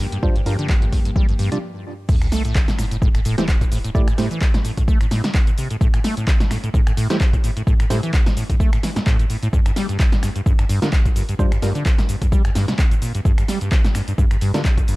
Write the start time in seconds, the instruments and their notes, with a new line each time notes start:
Already playing: string section G2 F3 A#3 G4
0.12 acid bass G2, closed hi-hat
0.23 acid bass G2, synth stab G3 D4 F4 C5, kick
0.35 acid bass G2, closed hi-hat
0.46 acid bass G2, synth stab G3 D4 F4 A#4, open hi-hat
0.59 acid bass D3, closed hi-hat
0.69 acid bass C3, kick, clap
0.82 acid bass A2, closed hi-hat
0.92 acid bass G2, kick, open hi-hat
1.05 acid bass G2, closed hi-hat
1.16 acid bass G3, kick
1.29 acid bass G2, closed hi-hat
1.39 acid bass G2, open hi-hat
1.52 acid bass C3, synth stab G3 D4 F4 D5, closed hi-hat
2.09 acid bass A2, kick, crash, sub drop, cabasa
2.22 acid bass A2, finger snap, closed hi-hat, cabasa
2.32 acid bass A3, snare, open hi-hat, cabasa
2.45 acid bass A2, closed hi-hat, cabasa
2.55 acid bass D3, kick, clap, cabasa
2.68 acid bass A#2, snare, closed hi-hat, cabasa
2.79 acid bass A2, finger snap, snare, open hi-hat, cabasa
2.91 acid bass A2, closed hi-hat, cabasa
3.02 acid bass A2, kick, cabasa
3.15 acid bass A2, finger snap, closed hi-hat, cabasa
3.25 acid bass A2, open hi-hat, cabasa
3.38 acid bass E3, synth stab A3 E4 G4 C5, snare, closed hi-hat, cabasa
3.48 acid bass D3, kick, clap, cabasa
3.61 acid bass A#2, kick, closed hi-hat, cabasa
3.72 acid bass A2, open hi-hat, cabasa
3.84 acid bass A2, closed hi-hat, cabasa
3.95 acid bass A2, synth stab A3 E4 G4 D5, kick, cabasa
4.08 acid bass A2, finger snap, closed hi-hat, cabasa
4.18 acid bass A2, synth stab A3 E4 G4 C5, snare, open hi-hat, cabasa
4.31 acid bass E3, closed hi-hat, cabasa
4.41 kick, clap, cabasa
4.54 acid bass A#2, snare, closed hi-hat, cabasa
4.65 acid bass A2, open hi-hat, cabasa
4.77 acid bass A2, kick, closed hi-hat, cabasa
4.88 acid bass A3, kick, cabasa
5.01 acid bass A2, finger snap, closed hi-hat, cabasa
5.11 acid bass A2, snare, open hi-hat, cabasa
5.24 acid bass D3, snare, closed hi-hat, cabasa
5.34 acid bass D3, kick, clap, cabasa
5.47 acid bass A#2, closed hi-hat, cabasa
5.58 acid bass C3, open hi-hat, cabasa
5.71 acid bass A2, closed hi-hat, cabasa
5.81 acid bass A2, kick, cabasa
5.94 acid bass A2, finger snap, closed hi-hat, cabasa
6.04 acid bass A3, snare, open hi-hat, cabasa
6.17 acid bass A2, closed hi-hat, cabasa
6.27 acid bass D3, kick, clap, cabasa
6.40 acid bass A#2, snare, closed hi-hat, cabasa
6.51 acid bass A2, finger snap, snare, open hi-hat, cabasa
6.64 acid bass A2, closed hi-hat, cabasa
6.74 acid bass A2, kick, cabasa
6.87 acid bass A2, finger snap, closed hi-hat, cabasa
6.97 acid bass A2, open hi-hat, cabasa
7.10 acid bass E3, synth stab A3 E4 G4 C5, snare, closed hi-hat, cabasa
7.20 acid bass D3, kick, clap, cabasa
7.33 acid bass A#2, kick, closed hi-hat, cabasa
7.44 acid bass A2, open hi-hat, cabasa
7.57 acid bass A2, closed hi-hat, cabasa
7.67 acid bass A2, kick, cabasa
7.80 acid bass A2, finger snap, closed hi-hat, cabasa
7.90 acid bass A2, synth stab A3 E4 G4 C5, snare, open hi-hat, cabasa
8.03 acid bass E3, closed hi-hat, cabasa
8.13 acid bass D3, kick, clap, cabasa
8.26 acid bass A#2, snare, closed hi-hat, cabasa
8.37 acid bass A2, open hi-hat, cabasa
8.50 acid bass A2, kick, closed hi-hat, cabasa
8.60 acid bass A3, kick, cabasa
8.73 acid bass A2, finger snap, closed hi-hat, cabasa
8.83 acid bass E3, snare, open hi-hat, cabasa
8.96 acid bass A2, snare, closed hi-hat, cabasa
9.06 acid bass A2, kick, clap, cabasa
9.19 acid bass A2, closed hi-hat, cabasa
9.30 acid bass A2, open hi-hat, cabasa
9.43 acid bass A2, closed hi-hat, cabasa
9.53 acid bass G2, kick, cabasa
9.66 acid bass G2, finger snap, closed hi-hat, cabasa
9.76 acid bass G3, snare, open hi-hat, cabasa
9.89 acid bass G2, closed hi-hat, cabasa
10.00 acid bass C3, kick, clap, cabasa
10.12 acid bass A2, snare, closed hi-hat, cabasa
10.23 acid bass G2, finger snap, snare, open hi-hat, cabasa
10.36 acid bass G2, closed hi-hat, cabasa
10.46 acid bass G2, kick, cabasa
10.59 acid bass G2, finger snap, closed hi-hat, cabasa
10.69 acid bass G2, open hi-hat, cabasa
10.82 acid bass D3, synth stab G3 D4 F4 A#4, snare, closed hi-hat, cabasa
10.93 acid bass C3, kick, clap, cabasa
11.05 acid bass A2, kick, closed hi-hat, cabasa
11.16 acid bass G2, open hi-hat, cabasa
11.29 acid bass G2, closed hi-hat, cabasa
11.39 acid bass G2, synth stab G3 D4 F4 C5, kick, cabasa
11.52 acid bass G2, finger snap, closed hi-hat, cabasa
11.62 acid bass G2, synth stab G3 D4 F4 A#4, snare, open hi-hat, cabasa
11.75 acid bass D3, closed hi-hat, cabasa
11.86 kick, clap, cabasa
11.98 acid bass A2, snare, closed hi-hat, cabasa
12.09 acid bass G2, open hi-hat, cabasa
12.22 acid bass G2, kick, closed hi-hat, cabasa
12.32 acid bass G3, kick, cabasa
12.45 acid bass G2, finger snap, closed hi-hat, cabasa
12.55 acid bass G2, snare, open hi-hat, cabasa
12.68 acid bass C3, snare, closed hi-hat, cabasa
12.79 acid bass C3, kick, clap, cabasa
12.91 acid bass A2, closed hi-hat, cabasa
13.02 acid bass A#2, open hi-hat, cabasa
13.15 acid bass G2, closed hi-hat, cabasa
13.25 acid bass G2, kick, cabasa
13.38 acid bass G2, finger snap, closed hi-hat, cabasa
13.48 acid bass G3, snare, open hi-hat, cabasa
13.61 acid bass G2, closed hi-hat, cabasa
13.72 acid bass C3, kick, clap, cabasa
13.84 acid bass A2, snare, closed hi-hat, cabasa
13.95 acid bass G2, finger snap, snare, open hi-hat, cabasa
14.08 acid bass G2, closed hi-hat, cabasa
14.18 acid bass G2, kick, cabasa
14.31 acid bass G2, finger snap, closed hi-hat, cabasa
14.41 acid bass G2, open hi-hat, cabasa
14.54 acid bass D3, synth stab G3 D4 F4 A#4, snare, closed hi-hat, cabasa
14.65 kick, clap, cabasa
14.77 acid bass A2, kick, closed hi-hat, cabasa
14.88 acid bass G2, open hi-hat, cabasa